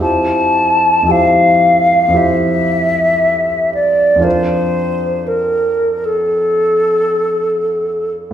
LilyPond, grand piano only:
\new Staff \with { instrumentName = "Grand piano" } { \time 4/4 \key f \major \tempo 4 = 58 <f, f e' g' c''>4 <f, f e' g' c''>4 <f, f e' g' c''>2 | <f, f d' f' bes'>1 | }